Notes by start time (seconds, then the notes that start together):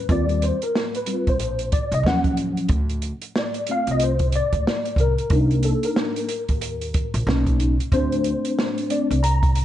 Already playing: B4
0.09 D#2 G3 C4 F4 D5, kick, closed hi-hat
0.29 closed hi-hat
0.42 C5, closed hi-hat
0.62 A#4, closed hi-hat
0.75 snare
0.95 B4, closed hi-hat
1.06 G3 C4 F4, closed hi-hat
1.27 A#1 C5, kick, closed hi-hat
1.39 closed hi-hat
1.59 closed hi-hat
1.72 D5, kick, closed hi-hat
1.91 C2 D#5, closed hi-hat
2.03 D#2 F3 F#3 C#4 F#5, snare
2.24 kick, closed hi-hat
2.37 closed hi-hat
2.57 closed hi-hat
2.69 D2, kick, closed hi-hat
2.89 closed hi-hat
3.02 closed hi-hat
3.22 closed hi-hat
3.36 D5, snare
3.54 closed hi-hat
3.67 A3 C4 F4, closed hi-hat
3.71 F5
3.87 C2, closed hi-hat
3.91 D#5
4.00 C5, closed hi-hat
4.19 kick, closed hi-hat
4.32 D5, closed hi-hat
4.53 D2, kick, closed hi-hat
4.67 snare
4.85 closed hi-hat
4.96 C2 A#4, kick, closed hi-hat
5.18 closed hi-hat
5.30 C2 A#3 D4 D#4, kick, closed hi-hat
5.51 closed hi-hat
5.63 A4, closed hi-hat
5.83 A#4, closed hi-hat
5.96 snare
6.16 closed hi-hat
6.29 closed hi-hat
6.49 D#2, kick, closed hi-hat
6.61 closed hi-hat
6.81 closed hi-hat
6.94 kick, closed hi-hat
7.14 A#1, closed hi-hat
7.27 B1 A#3 C#4 D#4, snare
7.47 kick, closed hi-hat
7.60 closed hi-hat
7.80 closed hi-hat
7.92 D2 A3 C4 D4 C5, kick, closed hi-hat
8.12 closed hi-hat
8.24 closed hi-hat
8.45 closed hi-hat
8.59 snare
8.78 closed hi-hat
8.90 A3 C4 D4 D5, closed hi-hat
9.10 C2, closed hi-hat
9.23 A#5, closed hi-hat
9.43 kick, closed hi-hat
9.55 closed hi-hat